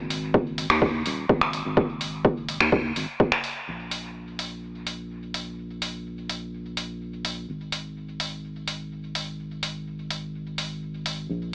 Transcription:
Already playing: analog synth bass G#1
0.10 open hi-hat
0.34 kick
0.58 open hi-hat
0.70 analog synth bass D#2, finger snap
0.82 kick
1.06 analog synth bass D#1, open hi-hat
1.29 analog synth bass G#1, kick
1.41 finger snap
1.53 open hi-hat
1.65 analog synth bass G#1
1.77 kick
2.01 open hi-hat
2.25 kick
2.49 open hi-hat
2.60 analog synth bass D#2, finger snap
2.72 analog synth bass D#2, kick
2.96 analog synth bass G#1, open hi-hat
3.20 kick
3.32 finger snap
3.44 open hi-hat
3.67 analog synth bass A#1
3.91 open hi-hat
4.39 open hi-hat
4.87 open hi-hat
5.34 open hi-hat
5.82 open hi-hat
6.29 open hi-hat
6.77 open hi-hat
7.25 open hi-hat
7.48 analog synth bass G#1
7.72 open hi-hat
8.20 open hi-hat
8.68 open hi-hat
9.15 open hi-hat
9.63 open hi-hat
10.10 open hi-hat
10.58 open hi-hat
11.06 open hi-hat
11.29 analog synth bass A#1

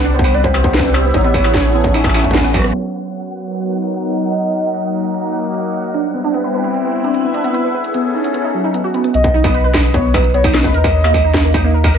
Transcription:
Already playing: sub bass C2, analog synth pad G3 C4, synth texture F#5
0.04 synth pluck D4
0.14 synth pluck B3, soft synth lead C5
0.19 analog synth pad E4, kick
0.24 analog synth pad G4 E5, synth pluck B4, struck metal
0.34 synth pluck B4, soft synth lead D5, closed hi-hat
0.44 synth pluck B4, soft synth lead C5, kick
0.54 struck metal
0.64 synth pluck B3, kick
0.74 soft synth lead B4, snare, closed hi-hat
0.79 kick
0.84 synth pluck D4
0.94 soft synth lead C5, struck metal
1.04 synth pluck B3, closed hi-hat
1.08 closed hi-hat
1.11 sub bass A1, synth pluck D#4, analog synth pad G#4, kick, closed hi-hat
1.14 soft synth lead C#5, closed hi-hat
1.18 closed hi-hat
1.21 synth pluck B3, closed hi-hat
1.24 closed hi-hat
1.28 analog synth pad A4
1.34 synth pluck B4, kick, struck metal
1.44 synth pluck B4, closed hi-hat, struck metal
1.51 analog synth pad C#4, synth pluck B4, kick, snare, closed hi-hat
1.74 synth pluck B3
1.84 kick, closed hi-hat
1.94 synth pluck D#4, closed hi-hat, struck metal
2.04 kick, struck metal
2.09 struck metal
2.14 synth pluck E4, struck metal
2.19 struck metal
2.24 synth pluck A3, kick, closed hi-hat
2.31 synth pluck B3, kick, snare, closed hi-hat
2.38 kick
2.44 synth pluck B3, cross-stick
2.54 synth pluck F#3, kick, cross-stick, struck metal
2.57 cross-stick
2.59 cross-stick
2.62 synth pluck B3, cross-stick
2.64 cross-stick, closed hi-hat
2.74 analog synth pad F#3, synth texture F#5
3.09 analog synth pad B3 A#4
3.14 closed hi-hat
3.42 analog synth pad D#4, closed hi-hat
3.46 analog synth pad D#5
3.54 closed hi-hat
3.61 closed hi-hat
3.68 closed hi-hat
3.84 closed hi-hat
3.94 closed hi-hat
4.14 closed hi-hat
4.24 closed hi-hat
4.34 closed hi-hat
4.63 analog synth pad A#3, closed hi-hat
4.74 closed hi-hat
5.04 closed hi-hat
5.14 closed hi-hat
5.44 closed hi-hat
5.54 closed hi-hat
5.74 closed hi-hat
5.84 closed hi-hat
5.94 analog synth pad G3, synth pluck D4, closed hi-hat
6.00 analog synth pad C4 E4
6.14 synth pluck B3
6.24 synth pluck D4, closed hi-hat
6.34 synth pluck B3, closed hi-hat
6.44 synth pluck B4
6.54 synth pluck B4
6.64 synth pluck B4, analog synth pad B4 E5, closed hi-hat
6.74 closed hi-hat
6.84 synth pluck B3
7.04 synth pluck D4, closed hi-hat
7.14 closed hi-hat
7.24 synth pluck B3
7.34 synth pluck D4, closed hi-hat
7.44 synth pluck B3, closed hi-hat
7.54 analog synth pad G#4, synth pluck B4, closed hi-hat
7.64 synth pluck B4
7.70 analog synth pad A4
7.74 analog synth pad C#4, synth pluck B4
7.84 closed hi-hat
7.94 synth pluck B3, closed hi-hat
8.14 synth pluck D#4
8.24 closed hi-hat
8.34 synth pluck B3, closed hi-hat
8.44 synth pluck D#4
8.54 synth pluck F#3
8.64 synth pluck D#4
8.74 synth pluck B3, closed hi-hat
8.84 synth pluck F#4
8.94 synth pluck B3, closed hi-hat
9.04 synth pluck B3, closed hi-hat
9.14 sub bass B1, soft synth lead D#5, closed hi-hat
9.24 synth pluck B3, kick
9.34 synth pluck D#4
9.44 synth pluck B3, kick, closed hi-hat, struck metal
9.54 synth pluck B4, closed hi-hat
9.64 synth pluck B4
9.74 synth pluck B4, soft synth lead D#5, kick, snare, struck metal
9.84 closed hi-hat
9.94 synth pluck B3, soft synth lead C#5, kick, closed hi-hat
10.14 synth pluck D#4, soft synth lead B4, kick, struck metal
10.24 closed hi-hat
10.34 synth pluck B3, soft synth lead C#5, closed hi-hat
10.44 synth pluck D#4, kick, struck metal
10.54 synth pluck B3, soft synth lead D#5, snare, struck metal
10.64 synth pluck B4, kick, closed hi-hat
10.74 sub bass D#2, synth pluck A#4, closed hi-hat
10.84 synth pluck A#4, kick, struck metal
11.04 synth pluck A#3, closed hi-hat, struck metal
11.14 kick, closed hi-hat, struck metal
11.24 synth pluck D#4
11.34 kick, snare
11.44 synth pluck A#3, closed hi-hat
11.54 synth pluck D#4, kick, closed hi-hat, struck metal
11.64 synth pluck A#3
11.74 synth pluck A#4
11.84 synth pluck A#4, kick, closed hi-hat, struck metal
11.94 synth pluck A#4, closed hi-hat

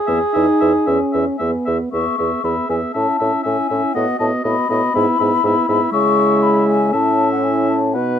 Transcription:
Already playing: clarinet G#4, flute G#5
0.07 bassoon E2, french horn B3, oboe E5
0.33 bassoon E2, french horn D#4, oboe E5
0.60 bassoon E2, oboe E5
0.87 bassoon E2, french horn C#4, oboe E5
1.13 bassoon E2, oboe E5
1.39 bassoon E2, french horn B3, oboe E5
1.66 bassoon E2, oboe E5
1.92 bassoon E2, french horn B3, clarinet G#4, oboe E5, flute C#6
2.18 bassoon E2, french horn B3, clarinet G#4, oboe E5
2.44 bassoon E2, french horn B3, clarinet G#4, oboe E5, flute B5
2.69 bassoon E2, french horn B3, clarinet G#4, oboe E5, flute G#5
2.93 bassoon A2, french horn C#4, clarinet E4, oboe E5, flute A5
3.19 bassoon A2, french horn C#4, clarinet E4, oboe E5
3.43 bassoon A2, french horn C#4, clarinet E4, oboe E5, flute G#5
3.69 bassoon A2, french horn C#4, clarinet E4, oboe E5
3.94 bassoon A2, french horn B3, clarinet F#4, oboe D#5, flute F#5
4.19 bassoon A2, french horn B3, clarinet F#4, oboe D#5, flute A5
4.44 bassoon A2, french horn B3, clarinet F#4, oboe D#5, flute B5
4.69 bassoon A2, french horn B3, clarinet F#4, oboe D#5
4.94 bassoon G#2, french horn B3, clarinet E4, oboe E5
5.19 bassoon G#2, french horn B3, clarinet E4, oboe E5
5.43 bassoon G#2, french horn B3, clarinet E4, oboe E5
5.68 bassoon G#2, french horn B3, clarinet E4, oboe E5
5.92 bassoon C#3, french horn G#3, clarinet E4, oboe E5, flute C#6
6.43 flute B5
6.68 flute G#5
6.92 bassoon A2, french horn C#4, clarinet E4, oboe E5, flute A5
7.32 flute F#5
7.43 flute G#5
7.69 flute A5
7.93 bassoon B2, french horn B3, clarinet D#4, oboe B4, flute F#5

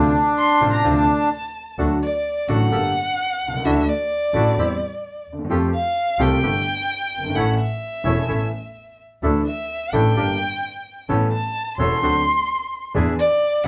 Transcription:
Already playing: grand piano D2 C3 D3 F3 A3 D4, double bass D2, bandoneon C4 D4 F4
0.38 violin C6
0.60 grand piano A1 A2 C3 F3 A3 D4, double bass A1, bandoneon C4 D4 F4
0.73 violin A#5
0.83 double bass D2, grand piano D2 C3 D3 F3 A3 D4, bandoneon C4 D4 F4
0.97 violin A5
1.78 double bass D2, grand piano D2 D3 F#3 A3 F#4, bandoneon A3 D4 F#4
2.02 violin D5
2.48 double bass A1, grand piano A1 A2 D3 F#3 A3 F#4, bandoneon A3 D4 F#4, violin F#5
2.71 double bass G1, grand piano G1 G2 D3 A3 A#3 G4, bandoneon A#3 G4 A4
3.41 double bass C2
3.48 grand piano B1
3.53 grand piano C2
3.59 grand piano C#2
3.64 double bass D2, grand piano D2 D3 E3 A3 D4 F#4, bandoneon D4 E4 F#4, violin E5
3.89 violin D5
4.33 grand piano A1 A2 E3 A3 D4 F#4, double bass A1, bandoneon D4 E4 F#4
4.57 double bass E2, grand piano E2 E3 G3 C4 G4, bandoneon C4 E4 G4
5.27 double bass D#2
5.33 grand piano D2
5.39 grand piano D#2
5.45 grand piano E2
5.50 double bass F2, grand piano F2 F3 A3 C4 G4, bandoneon A3 F4 G4
5.74 violin F5
6.19 double bass C2, grand piano C2 C3 F3 A3 C4 G4, bandoneon A3 F4 G4, violin G5
6.42 double bass G1, grand piano G1 G2 D3 A3 B3 G4, bandoneon A3 B3 G4
7.12 double bass G1
7.18 grand piano F#1
7.24 grand piano G1
7.29 grand piano G#1
7.34 grand piano A1 A2 E3 A3 C#4 A4, double bass A1, bandoneon A3 C#4 E4, violin F#5
7.52 violin F#5
7.58 violin E5
8.04 grand piano E1 E2 E3 A3 C#4 A4, double bass E1, bandoneon A3 C#4 E4
8.28 grand piano A1 A2 E3 A3 C#4 A4, double bass A1, bandoneon A3 C#4 E4
9.22 double bass D2, grand piano D2 D3 E3 A3 D4 A4, bandoneon A3 D4 E4
9.46 violin E5
9.92 double bass A1, grand piano A1 A2 E3 A3 D4 A4, bandoneon A3 D4 E4, violin G5
10.16 double bass G1, grand piano G1 G2 D3 G3 A#3 G4, bandoneon A#3 D4 G4
11.09 grand piano A1 A2 E3 B3 C#4 A4, double bass A1, bandoneon B3 C#4 A4
11.32 violin A5
11.78 double bass E1, grand piano E1 E2 E3 B3 C#4 A4, bandoneon B3 C#4 A4, violin C6
12.02 grand piano D2 D3 F#3 C4 D4 A4, double bass D2, bandoneon C4 D4 F#4
12.94 grand piano E2 E3 B3 D4 G#4, double bass E2, bandoneon D4 E4 G#4
13.19 violin D5
13.64 grand piano E3, bandoneon D4 E4, violin F#5

